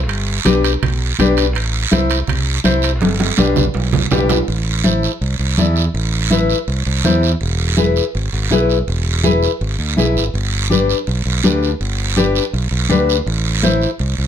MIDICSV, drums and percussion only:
0, 0, Header, 1, 2, 480
1, 0, Start_track
1, 0, Key_signature, 0, "minor"
1, 0, Tempo, 366077
1, 118, Time_signature, 4, 2, 24, 8
1, 18713, End_track
2, 0, Start_track
2, 0, Title_t, "Drums"
2, 119, Note_on_c, 9, 74, 67
2, 121, Note_on_c, 9, 65, 61
2, 250, Note_off_c, 9, 74, 0
2, 252, Note_off_c, 9, 65, 0
2, 596, Note_on_c, 9, 63, 76
2, 600, Note_on_c, 9, 65, 67
2, 604, Note_on_c, 9, 73, 65
2, 727, Note_off_c, 9, 63, 0
2, 731, Note_off_c, 9, 65, 0
2, 735, Note_off_c, 9, 73, 0
2, 845, Note_on_c, 9, 65, 65
2, 845, Note_on_c, 9, 73, 63
2, 976, Note_off_c, 9, 73, 0
2, 977, Note_off_c, 9, 65, 0
2, 1084, Note_on_c, 9, 65, 63
2, 1085, Note_on_c, 9, 64, 74
2, 1091, Note_on_c, 9, 74, 63
2, 1215, Note_off_c, 9, 65, 0
2, 1216, Note_off_c, 9, 64, 0
2, 1222, Note_off_c, 9, 74, 0
2, 1556, Note_on_c, 9, 63, 74
2, 1560, Note_on_c, 9, 73, 66
2, 1569, Note_on_c, 9, 65, 63
2, 1688, Note_off_c, 9, 63, 0
2, 1692, Note_off_c, 9, 73, 0
2, 1700, Note_off_c, 9, 65, 0
2, 1796, Note_on_c, 9, 73, 63
2, 1805, Note_on_c, 9, 65, 66
2, 1928, Note_off_c, 9, 73, 0
2, 1936, Note_off_c, 9, 65, 0
2, 2038, Note_on_c, 9, 74, 72
2, 2048, Note_on_c, 9, 65, 62
2, 2169, Note_off_c, 9, 74, 0
2, 2179, Note_off_c, 9, 65, 0
2, 2512, Note_on_c, 9, 73, 66
2, 2516, Note_on_c, 9, 63, 77
2, 2529, Note_on_c, 9, 65, 64
2, 2643, Note_off_c, 9, 73, 0
2, 2647, Note_off_c, 9, 63, 0
2, 2660, Note_off_c, 9, 65, 0
2, 2749, Note_on_c, 9, 73, 63
2, 2763, Note_on_c, 9, 65, 72
2, 2881, Note_off_c, 9, 73, 0
2, 2894, Note_off_c, 9, 65, 0
2, 2982, Note_on_c, 9, 74, 67
2, 2990, Note_on_c, 9, 64, 77
2, 3007, Note_on_c, 9, 65, 69
2, 3113, Note_off_c, 9, 74, 0
2, 3121, Note_off_c, 9, 64, 0
2, 3139, Note_off_c, 9, 65, 0
2, 3463, Note_on_c, 9, 73, 66
2, 3475, Note_on_c, 9, 63, 77
2, 3478, Note_on_c, 9, 65, 66
2, 3594, Note_off_c, 9, 73, 0
2, 3606, Note_off_c, 9, 63, 0
2, 3609, Note_off_c, 9, 65, 0
2, 3698, Note_on_c, 9, 73, 66
2, 3726, Note_on_c, 9, 65, 66
2, 3829, Note_off_c, 9, 73, 0
2, 3857, Note_off_c, 9, 65, 0
2, 3943, Note_on_c, 9, 74, 72
2, 3955, Note_on_c, 9, 65, 78
2, 3957, Note_on_c, 9, 63, 84
2, 4074, Note_off_c, 9, 74, 0
2, 4087, Note_off_c, 9, 65, 0
2, 4088, Note_off_c, 9, 63, 0
2, 4194, Note_on_c, 9, 65, 73
2, 4195, Note_on_c, 9, 63, 82
2, 4325, Note_off_c, 9, 65, 0
2, 4326, Note_off_c, 9, 63, 0
2, 4427, Note_on_c, 9, 73, 66
2, 4431, Note_on_c, 9, 66, 78
2, 4435, Note_on_c, 9, 63, 86
2, 4559, Note_off_c, 9, 73, 0
2, 4562, Note_off_c, 9, 66, 0
2, 4566, Note_off_c, 9, 63, 0
2, 4668, Note_on_c, 9, 73, 65
2, 4669, Note_on_c, 9, 64, 94
2, 4800, Note_off_c, 9, 64, 0
2, 4800, Note_off_c, 9, 73, 0
2, 4903, Note_on_c, 9, 74, 63
2, 4912, Note_on_c, 9, 66, 69
2, 5034, Note_off_c, 9, 74, 0
2, 5043, Note_off_c, 9, 66, 0
2, 5154, Note_on_c, 9, 64, 92
2, 5155, Note_on_c, 9, 66, 72
2, 5285, Note_off_c, 9, 64, 0
2, 5286, Note_off_c, 9, 66, 0
2, 5385, Note_on_c, 9, 73, 66
2, 5393, Note_on_c, 9, 64, 71
2, 5395, Note_on_c, 9, 66, 99
2, 5516, Note_off_c, 9, 73, 0
2, 5524, Note_off_c, 9, 64, 0
2, 5526, Note_off_c, 9, 66, 0
2, 5631, Note_on_c, 9, 66, 87
2, 5631, Note_on_c, 9, 73, 72
2, 5638, Note_on_c, 9, 64, 73
2, 5762, Note_off_c, 9, 66, 0
2, 5763, Note_off_c, 9, 73, 0
2, 5769, Note_off_c, 9, 64, 0
2, 5875, Note_on_c, 9, 74, 69
2, 6006, Note_off_c, 9, 74, 0
2, 6351, Note_on_c, 9, 63, 77
2, 6362, Note_on_c, 9, 73, 64
2, 6482, Note_off_c, 9, 63, 0
2, 6494, Note_off_c, 9, 73, 0
2, 6599, Note_on_c, 9, 73, 59
2, 6731, Note_off_c, 9, 73, 0
2, 6842, Note_on_c, 9, 74, 64
2, 6973, Note_off_c, 9, 74, 0
2, 7314, Note_on_c, 9, 63, 76
2, 7316, Note_on_c, 9, 73, 67
2, 7445, Note_off_c, 9, 63, 0
2, 7447, Note_off_c, 9, 73, 0
2, 7550, Note_on_c, 9, 73, 62
2, 7682, Note_off_c, 9, 73, 0
2, 7799, Note_on_c, 9, 74, 73
2, 7930, Note_off_c, 9, 74, 0
2, 8273, Note_on_c, 9, 63, 76
2, 8282, Note_on_c, 9, 73, 66
2, 8404, Note_off_c, 9, 63, 0
2, 8413, Note_off_c, 9, 73, 0
2, 8517, Note_on_c, 9, 73, 62
2, 8648, Note_off_c, 9, 73, 0
2, 8756, Note_on_c, 9, 74, 65
2, 8887, Note_off_c, 9, 74, 0
2, 9243, Note_on_c, 9, 73, 63
2, 9245, Note_on_c, 9, 63, 81
2, 9374, Note_off_c, 9, 73, 0
2, 9376, Note_off_c, 9, 63, 0
2, 9483, Note_on_c, 9, 73, 59
2, 9614, Note_off_c, 9, 73, 0
2, 9714, Note_on_c, 9, 74, 67
2, 9845, Note_off_c, 9, 74, 0
2, 10192, Note_on_c, 9, 73, 68
2, 10197, Note_on_c, 9, 63, 72
2, 10323, Note_off_c, 9, 73, 0
2, 10328, Note_off_c, 9, 63, 0
2, 10437, Note_on_c, 9, 73, 64
2, 10568, Note_off_c, 9, 73, 0
2, 10683, Note_on_c, 9, 74, 63
2, 10814, Note_off_c, 9, 74, 0
2, 11154, Note_on_c, 9, 63, 74
2, 11163, Note_on_c, 9, 73, 66
2, 11285, Note_off_c, 9, 63, 0
2, 11294, Note_off_c, 9, 73, 0
2, 11401, Note_on_c, 9, 73, 63
2, 11532, Note_off_c, 9, 73, 0
2, 11643, Note_on_c, 9, 74, 66
2, 11774, Note_off_c, 9, 74, 0
2, 12117, Note_on_c, 9, 63, 75
2, 12120, Note_on_c, 9, 73, 65
2, 12248, Note_off_c, 9, 63, 0
2, 12251, Note_off_c, 9, 73, 0
2, 12359, Note_on_c, 9, 73, 60
2, 12490, Note_off_c, 9, 73, 0
2, 12604, Note_on_c, 9, 74, 62
2, 12735, Note_off_c, 9, 74, 0
2, 13083, Note_on_c, 9, 63, 75
2, 13091, Note_on_c, 9, 73, 69
2, 13215, Note_off_c, 9, 63, 0
2, 13223, Note_off_c, 9, 73, 0
2, 13334, Note_on_c, 9, 73, 65
2, 13465, Note_off_c, 9, 73, 0
2, 13575, Note_on_c, 9, 74, 70
2, 13706, Note_off_c, 9, 74, 0
2, 14042, Note_on_c, 9, 63, 79
2, 14049, Note_on_c, 9, 73, 65
2, 14174, Note_off_c, 9, 63, 0
2, 14180, Note_off_c, 9, 73, 0
2, 14286, Note_on_c, 9, 73, 60
2, 14417, Note_off_c, 9, 73, 0
2, 14517, Note_on_c, 9, 74, 64
2, 14648, Note_off_c, 9, 74, 0
2, 14998, Note_on_c, 9, 63, 76
2, 15003, Note_on_c, 9, 73, 66
2, 15129, Note_off_c, 9, 63, 0
2, 15135, Note_off_c, 9, 73, 0
2, 15246, Note_on_c, 9, 73, 61
2, 15377, Note_off_c, 9, 73, 0
2, 15484, Note_on_c, 9, 74, 71
2, 15615, Note_off_c, 9, 74, 0
2, 15959, Note_on_c, 9, 73, 64
2, 15967, Note_on_c, 9, 63, 71
2, 16090, Note_off_c, 9, 73, 0
2, 16098, Note_off_c, 9, 63, 0
2, 16199, Note_on_c, 9, 73, 64
2, 16330, Note_off_c, 9, 73, 0
2, 16445, Note_on_c, 9, 74, 65
2, 16576, Note_off_c, 9, 74, 0
2, 16925, Note_on_c, 9, 63, 73
2, 16925, Note_on_c, 9, 73, 62
2, 17056, Note_off_c, 9, 63, 0
2, 17056, Note_off_c, 9, 73, 0
2, 17167, Note_on_c, 9, 73, 66
2, 17298, Note_off_c, 9, 73, 0
2, 17406, Note_on_c, 9, 74, 73
2, 17537, Note_off_c, 9, 74, 0
2, 17881, Note_on_c, 9, 63, 71
2, 17882, Note_on_c, 9, 73, 66
2, 18012, Note_off_c, 9, 63, 0
2, 18013, Note_off_c, 9, 73, 0
2, 18115, Note_on_c, 9, 73, 59
2, 18247, Note_off_c, 9, 73, 0
2, 18349, Note_on_c, 9, 74, 63
2, 18480, Note_off_c, 9, 74, 0
2, 18713, End_track
0, 0, End_of_file